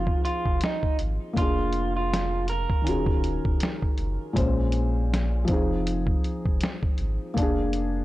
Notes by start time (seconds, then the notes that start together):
Already playing: F1 F3 C4 D#4 F4 G#4
0.07 kick
0.25 F4, closed hi-hat
0.46 F1, kick
0.61 D#4, snare, closed hi-hat
0.83 kick
0.99 G#1, closed hi-hat
1.33 F1 A#3, kick, closed hi-hat
1.38 D4 F4
1.42 G#4
1.73 closed hi-hat
1.97 F4
2.14 snare, closed hi-hat
2.48 A#4, closed hi-hat
2.70 kick
2.82 D#3 C#4
2.86 D#1 F4 F#4, closed hi-hat
2.91 G#4
3.06 kick
3.24 closed hi-hat
3.45 D#1, kick
3.60 snare, closed hi-hat
3.82 kick
3.98 F#1, closed hi-hat
4.33 A#1 A#2 G#3 C#4, kick, closed hi-hat
4.38 C5
4.72 closed hi-hat
5.14 snare, closed hi-hat
5.45 F3 C4, kick, closed hi-hat
5.49 F1 D#4
5.53 G#4
5.87 closed hi-hat
6.07 kick
6.24 closed hi-hat
6.46 F1, kick
6.61 snare, closed hi-hat
6.83 kick
6.98 G#1, closed hi-hat
7.34 F1 A#3, kick, closed hi-hat
7.38 D4
7.43 G#4
7.73 closed hi-hat